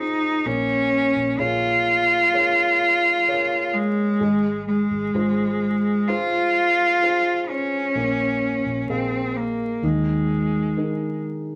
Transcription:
Already playing: felt piano G#3 F4 G#4 C5
0.00 cello D#4
0.46 fingered electric bass A#1, felt piano A#3, cello C#4
1.16 fingered electric bass A#1
1.39 fingered electric bass A#1, cello F4, felt piano G#4 A#4 C#5
2.33 felt piano G#4 A#4 C#5
3.27 felt piano G#4 A#4 C#5
3.74 cello G#3
4.21 fingered electric bass G#1, felt piano G#3
4.67 cello G#3
4.91 fingered electric bass G#1
5.14 fingered electric bass G#1, felt piano F4 G#4 C5
6.07 cello F4, felt piano F4 G#4 C5
7.02 felt piano F4 G#4 C5
7.49 cello C#4
7.95 fingered electric bass A#1, felt piano A#3
8.66 fingered electric bass A#1
8.89 fingered electric bass A#1, cello C4, felt piano G#4 A#4 F5
9.36 cello A#3
9.82 fingered electric bass D#2, felt piano D#3, cello G#3
10.77 felt piano D#4 G#4 A#4

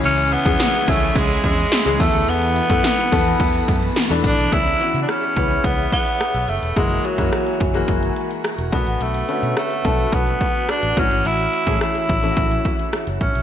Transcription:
Already playing: analog synth pad C#3 C#4 G#4 E5 G#5, grand piano E3 G#3 C#4 G#4 G#5
0.03 fingered electric bass C#2, overdriven electric guitar C#3 G#3 C#4, tenor saxophone C#4, closed hi-hat
0.18 closed hi-hat
0.32 tenor saxophone B3, closed hi-hat
0.45 fingered electric bass E2, grand piano E3 G#3 C#4 G#4, kick, closed hi-hat
0.60 snare, closed hi-hat
0.74 closed hi-hat
0.87 fingered electric bass C#2, grand piano E3 G#3 C#4 G#4, overdriven electric guitar G#3 C#4, tenor saxophone A3, kick, closed hi-hat
1.02 closed hi-hat
1.15 fingered electric bass C#2, overdriven electric guitar C#3 G#3 C#4, tenor saxophone G#3, kick, closed hi-hat
1.30 closed hi-hat
1.44 fingered electric bass E2, tenor saxophone G#3, kick, closed hi-hat
1.58 closed hi-hat
1.72 snare, closed hi-hat
1.85 fingered electric bass C#2, grand piano E3 G#3 C#4 G#4, closed hi-hat
1.99 fingered electric bass E2, overdriven electric guitar E2 B2 E3, grand piano E3 A3 B3 A4, analog synth pad E3 B3 A4 B5, tenor saxophone A3, kick, open hi-hat
2.14 fingered electric bass D2, closed hi-hat
2.28 fingered electric bass E2, tenor saxophone B3, closed hi-hat
2.42 closed hi-hat
2.56 closed hi-hat
2.70 fingered electric bass F#2, grand piano E3 A3 B3 A4, kick, closed hi-hat
2.84 snare, closed hi-hat
2.98 closed hi-hat
3.12 fingered electric bass E2, overdriven electric guitar B2 E3, grand piano E3 A3 B3 A4, kick, closed hi-hat
3.26 closed hi-hat
3.40 overdriven electric guitar E2 B2 E3, fingered electric bass E2, kick, closed hi-hat
3.55 closed hi-hat
3.68 fingered electric bass F#2, kick, closed hi-hat
3.83 closed hi-hat
3.96 snare, closed hi-hat
4.10 fingered electric bass E2, grand piano E3 A3 B3 D4, closed hi-hat
4.24 fingered electric bass A1, overdriven electric guitar B2 E3, tenor saxophone D4, kick, open hi-hat
4.38 fingered electric bass B1, closed hi-hat
4.52 fingered electric bass C#2, grand piano E3 B3 C#4 G#4, tenor saxophone E4, analog synth pad G#4 C#5 E5 B5, kick, closed hi-hat
4.66 closed hi-hat
4.80 grand piano E3 B3 C#4 F#4, closed hi-hat
4.94 fingered electric bass C#3, closed hi-hat
5.02 tenor saxophone D4
5.09 tenor saxophone C#4, cross-stick, closed hi-hat
5.23 closed hi-hat
5.36 fingered electric bass C#2, grand piano E3 B3 C#4 B4, kick, closed hi-hat
5.51 closed hi-hat
5.64 fingered electric bass C#2, tenor saxophone B3, kick, closed hi-hat
5.79 closed hi-hat
5.92 tenor saxophone B3, kick, closed hi-hat
6.07 closed hi-hat
6.20 cross-stick, closed hi-hat
6.34 fingered electric bass B1, closed hi-hat
6.48 fingered electric bass F#1, tenor saxophone A3, closed hi-hat
6.62 fingered electric bass E1, closed hi-hat
6.76 fingered electric bass F#1, grand piano E3 G#3 A#3 F#4, tenor saxophone G#3, analog synth pad F#4 A#4 G#5, kick, closed hi-hat
6.91 closed hi-hat
7.05 tenor saxophone F#3, closed hi-hat
7.18 fingered electric bass F#2, grand piano E3 G#3 A#3 F#4, kick, closed hi-hat
7.33 cross-stick, closed hi-hat
7.47 closed hi-hat
7.60 fingered electric bass F#1, kick, closed hi-hat
7.74 grand piano E3 G#3 A#3 F#4, closed hi-hat
7.88 fingered electric bass F#1, kick, closed hi-hat
8.03 closed hi-hat
8.16 closed hi-hat
8.31 closed hi-hat
8.44 cross-stick, closed hi-hat
8.58 fingered electric bass E1, closed hi-hat
8.72 fingered electric bass B1, grand piano D3 A3 B3 F#4, tenor saxophone B3, analog synth pad B4 F#5, kick, closed hi-hat
8.87 fingered electric bass A1, closed hi-hat
9.01 fingered electric bass B1, tenor saxophone A3, closed hi-hat
9.14 closed hi-hat
9.28 grand piano D3 A3 B3 C#4, closed hi-hat
9.43 fingered electric bass B2, closed hi-hat
9.57 tenor saxophone A3, cross-stick, closed hi-hat
9.71 closed hi-hat
9.84 fingered electric bass B1, grand piano D3 A3 B3 A4, kick, closed hi-hat
9.99 closed hi-hat
10.12 fingered electric bass B1, tenor saxophone B3, kick, closed hi-hat
10.27 closed hi-hat
10.41 kick, closed hi-hat
10.55 closed hi-hat
10.69 tenor saxophone D4, cross-stick, closed hi-hat
10.83 fingered electric bass A1, closed hi-hat
10.97 fingered electric bass A1, grand piano E3 A3 C#4 F#4, tenor saxophone C#4, analog synth pad C#5 E5, kick, closed hi-hat
11.11 fingered electric bass G#1, closed hi-hat
11.25 fingered electric bass A1, tenor saxophone E4, closed hi-hat
11.39 closed hi-hat
11.53 closed hi-hat
11.67 fingered electric bass A2, grand piano E3 A3 C#4 G#4, kick, closed hi-hat
11.81 tenor saxophone E4, cross-stick, closed hi-hat
11.95 closed hi-hat
12.09 fingered electric bass A1, kick, closed hi-hat
12.23 grand piano E3 A3 C#4 E4, closed hi-hat
12.30 grand piano F#4
12.37 fingered electric bass A1, kick, closed hi-hat
12.51 closed hi-hat
12.65 kick, closed hi-hat
12.79 closed hi-hat
12.93 cross-stick, closed hi-hat
13.07 fingered electric bass F#1, closed hi-hat
13.21 fingered electric bass A1, tenor saxophone C#4, kick, closed hi-hat
13.35 fingered electric bass B1, closed hi-hat

